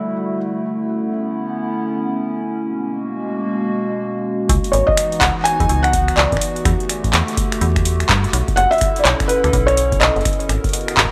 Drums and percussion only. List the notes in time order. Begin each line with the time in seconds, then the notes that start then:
4.49 kick, closed hi-hat
4.64 closed hi-hat
4.73 closed hi-hat
4.88 kick
4.97 finger snap, closed hi-hat
5.12 closed hi-hat
5.21 finger snap, kick, clap, closed hi-hat
5.45 finger snap, closed hi-hat
5.60 kick, closed hi-hat
5.69 closed hi-hat
5.84 finger snap, closed hi-hat
5.93 kick, closed hi-hat
6.08 finger snap, closed hi-hat
6.17 clap, closed hi-hat
6.32 kick, closed hi-hat
6.37 finger snap
6.41 closed hi-hat
6.56 closed hi-hat
6.65 finger snap, kick, closed hi-hat
6.80 closed hi-hat
6.89 finger snap, closed hi-hat
7.04 kick, closed hi-hat
7.06 kick
7.08 kick
7.10 kick
7.12 finger snap, kick, clap, closed hi-hat
7.28 closed hi-hat
7.37 kick, closed hi-hat
7.52 finger snap, closed hi-hat
7.61 closed hi-hat
7.76 finger snap, kick, closed hi-hat
7.85 closed hi-hat
8.00 finger snap, closed hi-hat
8.09 kick, clap, closed hi-hat
8.24 closed hi-hat
8.33 finger snap, closed hi-hat
8.48 kick, closed hi-hat
8.57 finger snap, closed hi-hat
8.72 closed hi-hat
8.78 finger snap, closed hi-hat
8.81 kick, closed hi-hat
8.96 closed hi-hat
9.05 clap, closed hi-hat
9.20 finger snap, kick, closed hi-hat
9.29 closed hi-hat
9.44 finger snap, closed hi-hat
9.53 kick, closed hi-hat
9.68 finger snap, closed hi-hat
9.77 closed hi-hat
9.92 kick, closed hi-hat
10.01 finger snap, clap, closed hi-hat
10.16 closed hi-hat
10.21 closed hi-hat
10.25 finger snap, kick, closed hi-hat
10.33 closed hi-hat
10.40 closed hi-hat
10.49 finger snap, closed hi-hat
10.64 kick, closed hi-hat
10.69 closed hi-hat
10.73 closed hi-hat
10.81 closed hi-hat
10.88 finger snap, closed hi-hat
10.97 kick, clap
11.05 kick